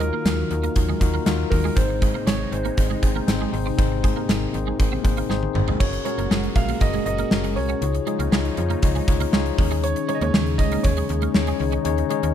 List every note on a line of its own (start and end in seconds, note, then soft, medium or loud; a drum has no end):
0.00 0.11 D#2 loud
0.00 0.22 D#3 medium
0.00 1.73 D#3 medium
0.00 1.73 F#3 medium
0.00 0.10 G#3 medium
0.00 0.25 D#4 medium
0.00 0.26 F4 medium
0.00 0.26 F#4 medium
0.00 0.26 A#4 loud
0.00 1.49 A#4 loud
0.00 1.73 F5 medium
0.00 closed hi-hat medium
0.13 0.22 A#3 medium
0.25 0.44 D#2 loud
0.25 0.35 G#3 medium
0.25 0.47 D#4 medium
0.25 0.47 F4 medium
0.25 0.47 F#4 medium
0.25 0.47 A#4 medium
0.25 snare loud
0.25 closed hi-hat medium
0.50 0.69 D#2 loud
0.50 0.72 D#4 medium
0.50 0.72 F4 medium
0.50 0.72 F#4 medium
0.50 0.73 A#4 medium
0.50 muted clean electric guitar stroke soft
0.50 closed hi-hat medium
0.63 0.73 A#3 medium
0.63 closed hi-hat medium
0.75 0.94 D#2 medium
0.75 0.97 D#4 medium
0.75 0.97 F4 medium
0.75 0.97 F#4 medium
0.75 0.98 A#4 medium
0.75 kick medium
0.75 closed hi-hat medium
0.89 0.98 G#3 medium
1.00 1.19 D#2 loud
1.00 1.22 D#4 loud
1.00 1.22 F4 loud
1.00 1.22 F#4 loud
1.00 1.23 A#4 loud
1.00 muted clean electric guitar stroke soft
1.00 kick medium
1.00 closed hi-hat medium
1.14 1.23 A#3 medium
1.26 1.45 D#2 loud
1.26 1.36 G#3 medium
1.26 1.48 D#4 loud
1.26 1.48 F4 loud
1.26 1.48 F#4 loud
1.26 1.48 A#4 loud
1.26 snare loud
1.26 closed hi-hat medium
1.50 1.70 D#2 loud
1.50 1.73 D#4 medium
1.50 1.73 F4 medium
1.50 1.73 F#4 medium
1.50 1.77 A#4 medium
1.50 1.73 A#4 medium
1.50 muted clean electric guitar stroke soft
1.50 kick medium
1.50 open hi-hat medium
1.64 1.74 G#3 medium
1.76 2.13 G#1 loud
1.76 2.48 G#2 medium
1.76 5.76 C3 medium
1.76 3.76 G#3 medium
1.76 1.98 C4 medium
1.76 1.98 D#4 medium
1.76 5.76 D#4 medium
1.76 1.98 G#4 medium
1.76 2.28 C5 medium
1.76 1.98 C5 loud
1.76 kick loud
1.76 closed hi-hat medium
1.89 muted clean electric guitar stroke soft
2.01 2.11 G#3 medium
2.01 2.23 C4 medium
2.01 2.23 D#4 medium
2.01 2.23 G#4 medium
2.01 2.23 C5 medium
2.01 kick loud
2.01 closed hi-hat medium
2.14 2.24 A#3 medium
2.26 2.45 G#1 loud
2.26 2.37 G#3 medium
2.26 2.48 C4 medium
2.26 2.48 D#4 medium
2.26 2.49 G#4 medium
2.26 2.49 C5 medium
2.26 2.53 C#5 medium
2.26 snare loud
2.26 closed hi-hat medium
2.52 2.70 G#1 loud
2.52 2.73 C4 medium
2.52 2.74 D#4 medium
2.52 2.74 G#4 medium
2.52 5.26 C5 medium
2.52 2.74 C5 medium
2.52 muted clean electric guitar stroke soft
2.52 closed hi-hat medium
2.65 2.74 A#3 medium
2.65 closed hi-hat medium
2.77 2.96 G#1 loud
2.77 2.99 C4 medium
2.77 2.99 D#4 medium
2.77 2.99 G#4 medium
2.77 2.99 C5 medium
2.77 kick medium
2.77 closed hi-hat medium
2.90 3.00 G#3 medium
3.02 3.21 G#1 medium
3.02 3.24 C4 medium
3.02 3.24 D#4 medium
3.02 3.24 G#4 medium
3.02 3.24 C5 loud
3.02 muted clean electric guitar stroke soft
3.02 kick medium
3.02 closed hi-hat medium
3.15 3.25 A#3 medium
3.27 3.46 G#1 loud
3.27 3.49 C4 loud
3.27 3.49 D#4 loud
3.27 3.49 G#4 loud
3.27 3.50 C5 loud
3.27 snare loud
3.27 closed hi-hat medium
3.41 3.50 G#3 medium
3.52 3.71 G#1 loud
3.52 3.74 C4 medium
3.52 3.74 D#4 medium
3.52 3.74 G#4 medium
3.52 3.75 C5 medium
3.52 muted clean electric guitar stroke soft
3.52 open hi-hat medium
3.66 3.75 C4 medium
3.78 4.15 G#1 loud
3.78 4.50 G#2 medium
3.78 5.78 A#3 medium
3.78 3.99 C4 loud
3.78 4.00 D#4 medium
3.78 4.00 G#4 loud
3.78 4.00 C5 loud
3.78 kick loud
3.78 closed hi-hat medium
3.91 muted clean electric guitar stroke soft
4.03 4.13 G#3 medium
4.03 4.25 C4 medium
4.03 4.25 D#4 medium
4.03 4.25 G#4 medium
4.03 4.25 C5 loud
4.03 kick loud
4.03 closed hi-hat medium
4.16 4.26 A#3 medium
4.28 4.47 G#1 loud
4.28 4.38 G#3 medium
4.28 4.50 C4 medium
4.28 4.50 D#4 medium
4.28 4.50 G#4 medium
4.28 4.50 A#4 medium
4.28 snare loud
4.28 closed hi-hat medium
4.54 4.73 G#1 loud
4.54 4.75 C4 medium
4.54 4.75 D#4 medium
4.54 4.76 G#4 medium
4.54 4.76 C5 medium
4.54 muted clean electric guitar stroke soft
4.54 closed hi-hat medium
4.67 4.76 G#3 medium
4.79 4.98 G#1 loud
4.79 5.00 C4 medium
4.79 5.01 D#4 medium
4.79 5.01 G#4 medium
4.79 5.01 C5 medium
4.79 kick medium
4.79 closed hi-hat medium
4.92 5.01 C4 medium
5.03 5.23 G#1 medium
5.03 5.25 C4 loud
5.03 5.26 D#4 medium
5.03 5.26 G#4 loud
5.03 5.26 C5 loud
5.03 muted clean electric guitar stroke soft
5.03 kick medium
5.03 closed hi-hat medium
5.17 5.27 A#3 medium
5.17 closed hi-hat medium
5.29 5.48 G#1 loud
5.29 5.39 G#3 medium
5.29 5.51 C4 loud
5.29 5.51 D#4 loud
5.29 5.51 G#4 medium
5.29 5.51 C5 loud
5.29 snare medium
5.43 high tom medium
5.54 5.73 G#1 loud
5.54 5.76 C4 medium
5.54 5.76 D#4 medium
5.54 5.77 G#4 medium
5.54 5.77 C5 medium
5.54 muted clean electric guitar stroke soft
5.54 mid tom medium
5.68 5.77 G#3 medium
5.68 floor tom medium
5.80 5.99 F#1 loud
5.80 7.80 A#2 medium
5.80 7.80 G#3 medium
5.80 6.01 C#4 medium
5.80 6.02 F#4 medium
5.80 7.80 F#4 medium
5.80 6.02 G#4 medium
5.80 6.02 A#4 medium
5.80 6.04 C#5 medium
5.80 kick loud
5.80 crash medium
5.93 muted clean electric guitar stroke soft
5.93 closed hi-hat medium
6.05 6.15 G#3 medium
6.05 6.27 C#4 medium
6.05 6.27 F#4 medium
6.05 6.27 G#4 medium
6.05 6.27 A#4 loud
6.05 6.57 C#5 medium
6.05 closed hi-hat medium
6.18 6.27 F#1 medium
6.18 6.27 A#3 medium
6.18 closed hi-hat medium
6.30 6.49 F#1 medium
6.30 6.40 G#3 medium
6.30 6.52 C#4 medium
6.30 6.52 F#4 medium
6.30 6.52 G#4 medium
6.30 6.52 A#4 medium
6.30 snare loud
6.43 closed hi-hat soft
6.56 6.74 A#1 medium
6.56 6.77 C#4 medium
6.56 6.77 F#4 medium
6.56 6.78 G#4 medium
6.56 6.78 A#4 medium
6.56 6.82 F5 loud
6.56 muted clean electric guitar stroke soft
6.56 kick medium
6.56 closed hi-hat medium
6.69 6.78 A#3 medium
6.69 closed hi-hat medium
6.81 6.99 F#1 loud
6.81 7.02 C#4 medium
6.81 7.02 F#4 medium
6.81 7.03 G#4 medium
6.81 7.03 A#4 medium
6.81 7.04 D#5 medium
6.81 kick medium
6.81 closed hi-hat medium
6.93 7.03 G#3 medium
6.93 closed hi-hat soft
7.06 7.24 F#1 medium
7.06 7.27 C#4 medium
7.06 7.28 F#4 medium
7.06 7.28 G#4 medium
7.06 7.28 A#4 medium
7.06 7.53 D#5 medium
7.06 muted clean electric guitar stroke soft
7.06 closed hi-hat medium
7.18 7.28 A#3 medium
7.18 closed hi-hat medium
7.31 7.58 F#1 loud
7.31 7.53 C#4 loud
7.31 7.53 F#4 medium
7.31 7.53 G#4 medium
7.31 7.53 A#4 loud
7.31 snare loud
7.44 7.53 G#3 medium
7.44 closed hi-hat medium
7.56 7.75 C2 medium
7.56 7.78 C#4 medium
7.56 7.78 F#4 medium
7.56 7.78 G#4 medium
7.56 7.78 A#4 medium
7.56 9.04 C#5 medium
7.56 muted clean electric guitar stroke soft
7.56 open hi-hat medium
7.69 7.79 C#4 medium
7.69 closed hi-hat soft
7.81 8.00 C#2 medium
7.81 9.56 C#3 medium
7.81 8.53 C#3 medium
7.81 9.57 F3 medium
7.81 8.03 D#4 medium
7.81 9.57 D#4 medium
7.81 8.03 F4 medium
7.81 8.03 G#4 medium
7.81 8.03 C#5 loud
7.81 closed hi-hat loud
7.94 muted clean electric guitar stroke soft
7.94 closed hi-hat medium
8.06 8.16 G#3 medium
8.06 8.28 D#4 medium
8.06 8.28 F4 medium
8.06 8.29 G#4 medium
8.06 8.29 C#5 loud
8.06 closed hi-hat medium
8.19 8.28 C#2 medium
8.19 8.29 A#3 medium
8.19 closed hi-hat medium
8.32 8.50 C#2 loud
8.32 8.42 G#3 medium
8.32 8.53 D#4 medium
8.32 8.54 F4 medium
8.32 8.54 G#4 medium
8.32 8.54 C#5 medium
8.32 snare loud
8.45 closed hi-hat soft
8.57 8.76 F2 medium
8.57 8.79 D#4 medium
8.57 8.79 F4 medium
8.57 8.79 G#4 medium
8.57 8.79 C#5 medium
8.57 muted clean electric guitar stroke soft
8.57 closed hi-hat medium
8.70 8.79 A#3 medium
8.70 closed hi-hat medium
8.82 9.01 C#2 loud
8.82 9.04 D#4 medium
8.82 9.04 F4 medium
8.82 9.04 G#4 medium
8.82 9.04 C#5 loud
8.82 kick medium
8.82 closed hi-hat medium
8.95 9.05 G#3 medium
8.95 closed hi-hat soft
9.07 9.26 C#2 loud
9.07 9.29 D#4 medium
9.07 9.29 F4 medium
9.07 9.29 G#4 medium
9.07 9.29 C#5 loud
9.07 muted clean electric guitar stroke soft
9.07 kick medium
9.07 closed hi-hat medium
9.20 9.30 A#3 medium
9.20 closed hi-hat medium
9.32 9.51 C#2 loud
9.32 9.42 G#3 medium
9.32 9.54 D#4 loud
9.32 9.54 F4 loud
9.32 9.54 G#4 loud
9.32 9.55 C#5 loud
9.32 snare loud
9.46 closed hi-hat medium
9.58 9.95 D#2 loud
9.58 12.34 C#3 medium
9.58 10.30 D#3 medium
9.58 12.34 G#3 medium
9.58 10.01 C#4 medium
9.58 10.01 D#4 medium
9.58 12.34 D#4 medium
9.58 10.01 G#4 medium
9.58 10.01 C#5 loud
9.58 muted clean electric guitar stroke soft
9.58 kick loud
9.58 open hi-hat medium
9.71 9.80 G#3 medium
9.71 closed hi-hat soft
9.84 10.07 C#5 loud
9.84 closed hi-hat medium
9.96 muted clean electric guitar stroke soft
9.96 closed hi-hat medium
10.08 10.18 G#3 medium
10.08 10.30 C#4 medium
10.08 10.30 D#4 medium
10.08 10.30 G#4 medium
10.08 10.16 C#5 loud
10.08 10.30 C#5 loud
10.08 closed hi-hat medium
10.15 10.22 D#5 medium
10.21 10.30 D#2 loud
10.21 10.31 A#3 medium
10.21 10.60 C#5 loud
10.21 closed hi-hat medium
10.33 10.60 D#2 loud
10.33 10.43 G#3 medium
10.33 10.55 C#4 medium
10.33 10.55 D#4 medium
10.33 10.56 G#4 medium
10.33 10.56 C#5 medium
10.33 snare loud
10.46 closed hi-hat soft
10.58 10.77 C#2 medium
10.58 10.80 C#4 medium
10.58 10.81 D#4 medium
10.58 10.81 G#4 medium
10.58 10.81 C#5 medium
10.58 10.85 D#5 loud
10.58 muted clean electric guitar stroke soft
10.58 kick medium
10.58 closed hi-hat medium
10.72 10.81 A#3 medium
10.72 closed hi-hat medium
10.83 11.03 D#2 loud
10.83 11.05 C#4 medium
10.83 11.06 D#4 medium
10.83 11.06 G#4 medium
10.83 12.34 C#5 medium
10.83 11.06 C#5 medium
10.83 kick medium
10.83 closed hi-hat medium
10.97 11.06 G#3 medium
10.97 closed hi-hat soft
11.09 11.28 D#2 loud
11.09 11.31 C#4 medium
11.09 11.31 D#4 medium
11.09 11.31 G#4 medium
11.09 11.31 C#5 medium
11.09 muted clean electric guitar stroke soft
11.09 closed hi-hat medium
11.22 11.32 A#3 medium
11.22 closed hi-hat medium
11.34 11.53 D#2 loud
11.34 11.56 C#4 loud
11.34 11.56 D#4 medium
11.34 11.56 G#4 medium
11.34 11.56 C#5 loud
11.34 snare loud
11.47 11.57 G#3 medium
11.47 closed hi-hat medium
11.59 11.78 C#2 medium
11.59 12.32 D#3 medium
11.59 11.81 C#4 medium
11.59 11.81 D#4 medium
11.59 11.81 G#4 medium
11.59 11.82 C#5 loud
11.59 muted clean electric guitar stroke soft
11.59 open hi-hat medium
11.72 11.82 C#4 medium
11.72 closed hi-hat soft
11.85 12.04 D#2 loud
11.85 12.06 C#4 loud
11.85 12.06 D#4 loud
11.85 12.07 G#4 loud
11.85 12.07 C#5 loud
11.85 closed hi-hat loud
11.98 muted clean electric guitar stroke soft
11.98 closed hi-hat medium
12.09 12.20 G#3 medium
12.09 12.31 C#4 loud
12.09 12.32 D#4 loud
12.09 12.32 G#4 loud
12.09 12.32 C#5 loud
12.09 closed hi-hat medium
12.23 12.32 D#2 loud
12.23 12.33 A#3 medium
12.23 closed hi-hat medium